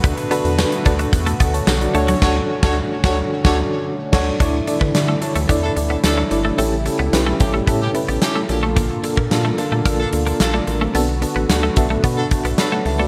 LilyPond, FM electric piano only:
\new Staff \with { instrumentName = "FM electric piano" } { \time 4/4 \key d \major \tempo 4 = 110 << { r2 r8 <a' fis''>16 <cis'' a''>16 <a' fis''>16 <fis' d''>8 r16 | r1 | r1 | r1 |
r2. r16 <f' d''>16 <d' bes'>16 <c' a'>16~ | <c' a'>16 r4 r16 e''8 fis''8 a''8 <cis'' a'' b''>16 <a' fis''>16 <e'' a''>16 <fis' d''>16 | } \\ { <d' fis' a' b'>16 r16 <d' fis' a' b'>16 r16 <d' fis' a' b'>16 r16 <d' fis' a' b'>16 r4. r16 <d' fis' a' cis''>8 | <d' fis' a' cis''>8 r16 <d' fis' a'>8 r16 <d' fis' a' cis''>8 r16 <d' fis' a' d''>8 r8. <d' fis' a' cis''>8 | <d' e' a' d''>16 r16 <d' e' a' d''>16 r16 <d' e' a' d''>16 r16 <d' e' a' cis''>16 r16 <d' e' a' d''>16 r16 <d' e' a' d''>16 r16 <d' e' a' d''>16 r16 <d' e' a' d''>16 r16 | <cis' e' g' a'>16 r16 <cis' e' g' a'>16 r16 <cis' e' g' b'>16 r16 <cis' e' g' a'>16 r16 <cis' e' g' a'>16 r16 <cis' e' g' b'>16 r16 <cis' e' g' a'>16 r16 <bes d' f' a'>8~ |
<bes d' f' a'>16 r16 <bes d' f' a'>16 r16 <bes d' f' a'>16 r16 <bes d' f' a'>16 r16 <bes d' f' a'>16 r16 <bes d' f' a'>16 r4 r16 | <b d' fis' a'>16 r16 <b d' fis' a'>16 r16 <b d' fis' a'>16 r16 <b d' fis' a'>16 r16 <b d' fis' b'>16 r4. r16 | } >> }